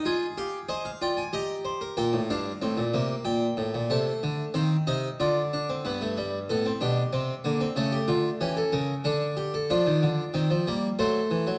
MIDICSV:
0, 0, Header, 1, 2, 480
1, 0, Start_track
1, 0, Tempo, 643087
1, 42, Time_signature, 3, 2, 24, 8
1, 8645, End_track
2, 0, Start_track
2, 0, Title_t, "Harpsichord"
2, 0, Program_c, 0, 6
2, 40, Note_on_c, 0, 65, 94
2, 43, Note_on_c, 0, 80, 67
2, 44, Note_on_c, 0, 68, 76
2, 188, Note_off_c, 0, 65, 0
2, 190, Note_off_c, 0, 80, 0
2, 280, Note_on_c, 0, 67, 90
2, 283, Note_on_c, 0, 77, 69
2, 428, Note_off_c, 0, 67, 0
2, 430, Note_off_c, 0, 77, 0
2, 503, Note_off_c, 0, 68, 0
2, 512, Note_on_c, 0, 68, 88
2, 515, Note_on_c, 0, 72, 70
2, 516, Note_on_c, 0, 75, 72
2, 633, Note_off_c, 0, 75, 0
2, 636, Note_on_c, 0, 77, 77
2, 662, Note_off_c, 0, 68, 0
2, 664, Note_off_c, 0, 72, 0
2, 752, Note_off_c, 0, 77, 0
2, 758, Note_on_c, 0, 65, 88
2, 760, Note_on_c, 0, 74, 68
2, 762, Note_on_c, 0, 79, 72
2, 875, Note_on_c, 0, 80, 72
2, 876, Note_off_c, 0, 79, 0
2, 906, Note_off_c, 0, 65, 0
2, 907, Note_off_c, 0, 74, 0
2, 992, Note_off_c, 0, 80, 0
2, 992, Note_on_c, 0, 67, 92
2, 996, Note_on_c, 0, 75, 69
2, 997, Note_on_c, 0, 82, 81
2, 1145, Note_off_c, 0, 75, 0
2, 1230, Note_on_c, 0, 72, 70
2, 1349, Note_off_c, 0, 72, 0
2, 1353, Note_on_c, 0, 70, 75
2, 1460, Note_off_c, 0, 67, 0
2, 1462, Note_off_c, 0, 82, 0
2, 1471, Note_off_c, 0, 70, 0
2, 1471, Note_on_c, 0, 79, 71
2, 1472, Note_on_c, 0, 46, 91
2, 1472, Note_on_c, 0, 58, 76
2, 1591, Note_off_c, 0, 46, 0
2, 1591, Note_on_c, 0, 45, 88
2, 1622, Note_off_c, 0, 58, 0
2, 1622, Note_off_c, 0, 79, 0
2, 1710, Note_off_c, 0, 45, 0
2, 1718, Note_on_c, 0, 43, 88
2, 1718, Note_on_c, 0, 62, 78
2, 1721, Note_on_c, 0, 77, 78
2, 1867, Note_off_c, 0, 43, 0
2, 1867, Note_off_c, 0, 62, 0
2, 1952, Note_on_c, 0, 60, 76
2, 1956, Note_on_c, 0, 45, 91
2, 2067, Note_on_c, 0, 46, 91
2, 2073, Note_off_c, 0, 45, 0
2, 2103, Note_off_c, 0, 60, 0
2, 2189, Note_off_c, 0, 46, 0
2, 2192, Note_on_c, 0, 48, 95
2, 2195, Note_on_c, 0, 58, 77
2, 2343, Note_off_c, 0, 48, 0
2, 2419, Note_off_c, 0, 77, 0
2, 2424, Note_on_c, 0, 46, 90
2, 2425, Note_on_c, 0, 79, 74
2, 2577, Note_off_c, 0, 46, 0
2, 2667, Note_on_c, 0, 45, 89
2, 2788, Note_off_c, 0, 45, 0
2, 2795, Note_on_c, 0, 46, 88
2, 2895, Note_off_c, 0, 58, 0
2, 2896, Note_off_c, 0, 79, 0
2, 2910, Note_on_c, 0, 57, 75
2, 2912, Note_off_c, 0, 46, 0
2, 2913, Note_on_c, 0, 48, 89
2, 2915, Note_on_c, 0, 81, 72
2, 3063, Note_off_c, 0, 48, 0
2, 3159, Note_on_c, 0, 50, 86
2, 3307, Note_off_c, 0, 50, 0
2, 3380, Note_off_c, 0, 57, 0
2, 3383, Note_off_c, 0, 81, 0
2, 3389, Note_on_c, 0, 60, 78
2, 3391, Note_on_c, 0, 51, 90
2, 3397, Note_on_c, 0, 77, 73
2, 3541, Note_off_c, 0, 60, 0
2, 3543, Note_off_c, 0, 51, 0
2, 3547, Note_off_c, 0, 77, 0
2, 3636, Note_on_c, 0, 75, 77
2, 3638, Note_on_c, 0, 63, 74
2, 3640, Note_on_c, 0, 48, 84
2, 3786, Note_off_c, 0, 75, 0
2, 3787, Note_off_c, 0, 63, 0
2, 3789, Note_off_c, 0, 48, 0
2, 3880, Note_on_c, 0, 65, 72
2, 3880, Note_on_c, 0, 74, 72
2, 3883, Note_on_c, 0, 50, 81
2, 4030, Note_off_c, 0, 65, 0
2, 4130, Note_on_c, 0, 62, 71
2, 4243, Note_off_c, 0, 62, 0
2, 4250, Note_on_c, 0, 60, 69
2, 4348, Note_off_c, 0, 74, 0
2, 4350, Note_off_c, 0, 50, 0
2, 4363, Note_off_c, 0, 60, 0
2, 4365, Note_on_c, 0, 43, 58
2, 4367, Note_on_c, 0, 71, 57
2, 4369, Note_on_c, 0, 59, 69
2, 4483, Note_off_c, 0, 59, 0
2, 4488, Note_on_c, 0, 57, 71
2, 4603, Note_off_c, 0, 57, 0
2, 4608, Note_on_c, 0, 55, 73
2, 4756, Note_off_c, 0, 55, 0
2, 4831, Note_off_c, 0, 43, 0
2, 4833, Note_off_c, 0, 71, 0
2, 4848, Note_on_c, 0, 69, 62
2, 4853, Note_on_c, 0, 59, 69
2, 4854, Note_on_c, 0, 45, 61
2, 4965, Note_off_c, 0, 59, 0
2, 4970, Note_on_c, 0, 60, 78
2, 4996, Note_off_c, 0, 69, 0
2, 5000, Note_off_c, 0, 45, 0
2, 5081, Note_on_c, 0, 62, 68
2, 5084, Note_off_c, 0, 60, 0
2, 5086, Note_on_c, 0, 47, 60
2, 5087, Note_on_c, 0, 67, 57
2, 5231, Note_off_c, 0, 62, 0
2, 5234, Note_off_c, 0, 47, 0
2, 5319, Note_on_c, 0, 48, 61
2, 5321, Note_on_c, 0, 60, 77
2, 5469, Note_off_c, 0, 48, 0
2, 5470, Note_off_c, 0, 60, 0
2, 5556, Note_on_c, 0, 58, 74
2, 5561, Note_on_c, 0, 50, 68
2, 5676, Note_off_c, 0, 58, 0
2, 5677, Note_on_c, 0, 60, 73
2, 5710, Note_off_c, 0, 50, 0
2, 5783, Note_off_c, 0, 67, 0
2, 5793, Note_on_c, 0, 49, 74
2, 5795, Note_on_c, 0, 57, 66
2, 5796, Note_off_c, 0, 60, 0
2, 5798, Note_on_c, 0, 69, 79
2, 5913, Note_on_c, 0, 67, 77
2, 5917, Note_off_c, 0, 69, 0
2, 5945, Note_off_c, 0, 49, 0
2, 6030, Note_on_c, 0, 50, 71
2, 6030, Note_on_c, 0, 65, 73
2, 6035, Note_off_c, 0, 67, 0
2, 6183, Note_off_c, 0, 50, 0
2, 6183, Note_off_c, 0, 65, 0
2, 6265, Note_off_c, 0, 57, 0
2, 6275, Note_on_c, 0, 52, 70
2, 6277, Note_on_c, 0, 67, 80
2, 6278, Note_on_c, 0, 61, 73
2, 6395, Note_on_c, 0, 69, 74
2, 6396, Note_off_c, 0, 67, 0
2, 6426, Note_off_c, 0, 52, 0
2, 6512, Note_on_c, 0, 70, 81
2, 6513, Note_on_c, 0, 49, 70
2, 6515, Note_off_c, 0, 69, 0
2, 6664, Note_off_c, 0, 70, 0
2, 6665, Note_off_c, 0, 49, 0
2, 6746, Note_off_c, 0, 61, 0
2, 6750, Note_on_c, 0, 50, 73
2, 6754, Note_on_c, 0, 62, 68
2, 6754, Note_on_c, 0, 69, 76
2, 6905, Note_off_c, 0, 69, 0
2, 6992, Note_on_c, 0, 67, 72
2, 7114, Note_off_c, 0, 67, 0
2, 7121, Note_on_c, 0, 69, 79
2, 7221, Note_off_c, 0, 50, 0
2, 7223, Note_off_c, 0, 62, 0
2, 7238, Note_off_c, 0, 69, 0
2, 7239, Note_on_c, 0, 74, 74
2, 7242, Note_on_c, 0, 65, 66
2, 7243, Note_on_c, 0, 53, 83
2, 7243, Note_on_c, 0, 62, 66
2, 7358, Note_off_c, 0, 53, 0
2, 7363, Note_on_c, 0, 51, 80
2, 7478, Note_off_c, 0, 51, 0
2, 7483, Note_on_c, 0, 50, 81
2, 7631, Note_off_c, 0, 50, 0
2, 7706, Note_off_c, 0, 62, 0
2, 7717, Note_on_c, 0, 51, 77
2, 7718, Note_on_c, 0, 60, 68
2, 7835, Note_off_c, 0, 51, 0
2, 7839, Note_on_c, 0, 53, 82
2, 7867, Note_off_c, 0, 60, 0
2, 7956, Note_off_c, 0, 53, 0
2, 7968, Note_on_c, 0, 55, 80
2, 7969, Note_on_c, 0, 58, 73
2, 8114, Note_off_c, 0, 55, 0
2, 8114, Note_off_c, 0, 58, 0
2, 8169, Note_off_c, 0, 74, 0
2, 8170, Note_off_c, 0, 65, 0
2, 8202, Note_on_c, 0, 57, 64
2, 8203, Note_on_c, 0, 54, 75
2, 8203, Note_on_c, 0, 72, 61
2, 8204, Note_on_c, 0, 69, 68
2, 8351, Note_off_c, 0, 54, 0
2, 8440, Note_on_c, 0, 52, 66
2, 8557, Note_off_c, 0, 52, 0
2, 8560, Note_on_c, 0, 54, 74
2, 8645, Note_off_c, 0, 54, 0
2, 8645, Note_off_c, 0, 57, 0
2, 8645, Note_off_c, 0, 69, 0
2, 8645, Note_off_c, 0, 72, 0
2, 8645, End_track
0, 0, End_of_file